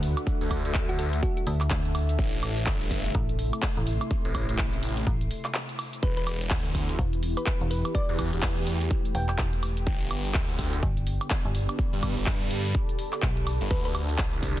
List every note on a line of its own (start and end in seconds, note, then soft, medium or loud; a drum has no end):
0.00 0.15 D2 loud
0.00 2.15 D3 medium
0.00 2.15 A3 medium
0.00 3.69 D4 medium
0.00 2.15 F#4 medium
0.00 6.71 A4 medium
0.00 7.18 E5 medium
0.00 3.43 F#5 medium
0.00 open hi-hat medium
0.17 closed hi-hat medium
0.17 cabasa medium
0.17 high woodblock medium
0.27 kick loud
0.27 cabasa medium
0.41 0.63 D2 medium
0.41 closed hi-hat soft
0.41 cabasa soft
0.51 kick medium
0.51 open hi-hat loud
0.51 high woodblock medium
0.65 0.73 D2 medium
0.65 closed hi-hat medium
0.65 cabasa medium
0.74 1.21 D2 loud
0.74 kick loud
0.74 clap loud
0.74 cabasa medium
0.89 0.97 F#4 medium
0.89 closed hi-hat medium
0.89 cabasa soft
0.99 1.16 A4 medium
0.99 open hi-hat medium
1.13 closed hi-hat medium
1.13 cabasa medium
1.23 1.32 F#4 medium
1.23 kick loud
1.23 cabasa medium
1.37 1.43 F#4 medium
1.37 closed hi-hat medium
1.37 cabasa soft
1.47 1.69 D2 medium
1.47 open hi-hat loud
1.61 clap soft
1.61 closed hi-hat medium
1.61 cabasa medium
1.61 high woodblock medium
1.70 2.17 D2 medium
1.70 kick loud
1.70 clap loud
1.70 cabasa medium
1.85 closed hi-hat soft
1.85 cabasa soft
1.95 open hi-hat medium
1.95 high woodblock medium
2.09 closed hi-hat medium
2.09 cabasa medium
2.19 2.65 A1 medium
2.19 5.99 C3 medium
2.19 5.99 A3 medium
2.19 5.99 E4 medium
2.19 kick loud
2.19 cabasa medium
2.33 closed hi-hat soft
2.33 cabasa soft
2.43 open hi-hat loud
2.43 high woodblock medium
2.57 closed hi-hat medium
2.57 cabasa medium
2.66 3.13 G1 loud
2.66 kick loud
2.66 clap loud
2.66 cabasa medium
2.81 closed hi-hat medium
2.81 cabasa soft
2.91 kick medium
2.91 open hi-hat medium
2.97 6.03 C6 medium
3.05 closed hi-hat medium
3.05 cabasa medium
3.15 3.51 A1 loud
3.15 kick loud
3.15 cabasa medium
3.29 closed hi-hat medium
3.29 cabasa soft
3.39 open hi-hat loud
3.53 closed hi-hat medium
3.53 cabasa medium
3.53 high woodblock medium
3.62 kick loud
3.62 clap loud
3.62 cabasa medium
3.77 3.99 A1 loud
3.77 closed hi-hat soft
3.77 cabasa soft
3.87 open hi-hat medium
4.01 closed hi-hat medium
4.01 cabasa medium
4.01 high woodblock medium
4.11 kick loud
4.11 cabasa medium
4.25 4.47 A1 medium
4.25 closed hi-hat soft
4.25 cabasa soft
4.35 kick medium
4.35 open hi-hat loud
4.35 high woodblock medium
4.49 4.57 A1 medium
4.49 closed hi-hat medium
4.49 cabasa medium
4.58 5.05 A1 loud
4.58 kick loud
4.58 clap loud
4.58 cabasa medium
4.73 closed hi-hat medium
4.73 cabasa soft
4.83 open hi-hat medium
4.97 closed hi-hat medium
4.97 cabasa medium
5.07 5.29 A1 loud
5.07 kick loud
5.07 cabasa medium
5.21 closed hi-hat medium
5.21 cabasa soft
5.31 open hi-hat loud
5.45 clap soft
5.45 closed hi-hat medium
5.45 cabasa medium
5.45 high woodblock medium
5.54 clap loud
5.54 cabasa medium
5.69 closed hi-hat soft
5.69 cabasa soft
5.79 open hi-hat medium
5.79 high woodblock medium
5.93 closed hi-hat medium
5.93 cabasa medium
6.03 6.49 E1 medium
6.03 9.83 E3 medium
6.03 7.93 B3 medium
6.03 10.68 E4 medium
6.03 11.75 G4 medium
6.03 6.12 B4 medium
6.03 kick loud
6.03 cabasa medium
6.17 6.23 B4 medium
6.17 closed hi-hat soft
6.17 cabasa soft
6.27 open hi-hat loud
6.27 high woodblock medium
6.38 11.18 B4 medium
6.38 closed hi-hat medium
6.38 cabasa medium
6.50 6.97 D2 loud
6.50 kick loud
6.50 clap loud
6.50 cabasa medium
6.65 closed hi-hat medium
6.65 cabasa soft
6.75 kick medium
6.75 open hi-hat loud
6.89 closed hi-hat medium
6.89 cabasa medium
6.99 7.35 E1 loud
6.99 kick loud
6.99 cabasa medium
7.13 closed hi-hat medium
7.13 cabasa soft
7.23 open hi-hat loud
7.31 10.97 G5 medium
7.37 7.43 B4 medium
7.37 closed hi-hat medium
7.37 cabasa medium
7.37 high woodblock medium
7.46 7.56 B4 medium
7.46 kick loud
7.46 clap loud
7.46 cabasa medium
7.61 7.83 E1 loud
7.61 closed hi-hat soft
7.61 cabasa soft
7.71 7.93 B4 medium
7.71 open hi-hat medium
7.85 closed hi-hat medium
7.85 cabasa medium
7.85 high woodblock medium
7.95 9.85 A3 medium
7.95 8.12 D5 medium
7.95 kick loud
7.95 cabasa medium
8.09 8.31 E2 medium
8.09 closed hi-hat soft
8.09 cabasa soft
8.19 kick medium
8.19 open hi-hat loud
8.19 high woodblock medium
8.33 8.41 E1 medium
8.33 closed hi-hat medium
8.33 cabasa medium
8.42 8.89 E2 loud
8.42 kick loud
8.42 clap loud
8.42 cabasa medium
8.57 closed hi-hat medium
8.57 cabasa soft
8.67 open hi-hat loud
8.81 closed hi-hat medium
8.81 cabasa medium
8.91 kick loud
8.91 cabasa medium
9.05 closed hi-hat medium
9.05 cabasa soft
9.15 9.37 E1 loud
9.15 9.24 G5 medium
9.15 open hi-hat loud
9.29 9.35 G5 medium
9.29 clap soft
9.29 closed hi-hat medium
9.29 cabasa medium
9.29 high woodblock medium
9.38 9.85 E1 medium
9.38 kick loud
9.38 clap loud
9.38 cabasa medium
9.53 closed hi-hat soft
9.53 cabasa soft
9.63 open hi-hat loud
9.63 high woodblock medium
9.77 closed hi-hat medium
9.77 cabasa medium
9.87 10.33 G1 loud
9.87 13.67 D3 medium
9.87 13.67 B3 medium
9.87 13.71 G4 medium
9.87 kick loud
9.87 cabasa medium
10.01 closed hi-hat soft
10.01 cabasa soft
10.09 14.60 D5 medium
10.09 open hi-hat loud
10.09 high woodblock medium
10.25 closed hi-hat medium
10.25 cabasa medium
10.34 10.81 D2 loud
10.34 kick loud
10.34 clap loud
10.34 cabasa medium
10.49 closed hi-hat medium
10.49 cabasa soft
10.59 14.60 A5 medium
10.59 kick medium
10.59 open hi-hat loud
10.73 closed hi-hat medium
10.73 cabasa medium
10.83 11.19 G1 loud
10.83 kick loud
10.83 cabasa medium
10.97 closed hi-hat soft
10.97 cabasa soft
11.03 14.60 B5 medium
11.03 open hi-hat loud
11.21 closed hi-hat medium
11.21 cabasa medium
11.21 high woodblock medium
11.30 kick loud
11.30 clap loud
11.30 cabasa medium
11.45 11.67 G1 loud
11.45 closed hi-hat soft
11.45 cabasa soft
11.55 open hi-hat loud
11.69 closed hi-hat medium
11.69 cabasa medium
11.69 high woodblock medium
11.79 13.69 A4 medium
11.79 kick loud
11.79 cabasa medium
11.93 12.15 G2 medium
11.93 closed hi-hat soft
11.93 cabasa soft
12.03 kick medium
12.03 open hi-hat loud
12.03 high woodblock medium
12.17 12.25 G1 loud
12.17 closed hi-hat medium
12.17 cabasa medium
12.26 12.73 G2 medium
12.26 kick loud
12.26 clap loud
12.26 cabasa medium
12.41 closed hi-hat soft
12.41 cabasa soft
12.51 open hi-hat loud
12.65 closed hi-hat medium
12.65 cabasa medium
12.75 kick loud
12.75 cabasa medium
12.89 closed hi-hat soft
12.89 cabasa soft
12.99 open hi-hat loud
13.13 clap soft
13.13 closed hi-hat medium
13.13 cabasa medium
13.13 high woodblock medium
13.22 13.59 B1 loud
13.22 kick loud
13.22 clap loud
13.22 cabasa medium
13.37 closed hi-hat soft
13.37 cabasa soft
13.47 open hi-hat medium
13.47 high woodblock medium
13.61 13.69 G1 medium
13.61 closed hi-hat medium
13.61 cabasa medium
13.71 14.17 D2 medium
13.71 14.60 D3 medium
13.71 14.60 A3 medium
13.71 14.60 D4 medium
13.71 14.60 F#4 medium
13.71 13.80 B4 medium
13.71 kick loud
13.71 cabasa medium
13.85 14.60 A4 medium
13.85 13.91 B4 medium
13.85 closed hi-hat soft
13.85 cabasa soft
13.95 open hi-hat loud
13.95 high woodblock medium
14.09 closed hi-hat medium
14.09 cabasa medium
14.18 14.60 C2 medium
14.18 kick loud
14.18 clap loud
14.18 cabasa medium
14.33 closed hi-hat soft
14.33 cabasa soft
14.38 14.60 E5 medium
14.43 kick medium
14.43 open hi-hat medium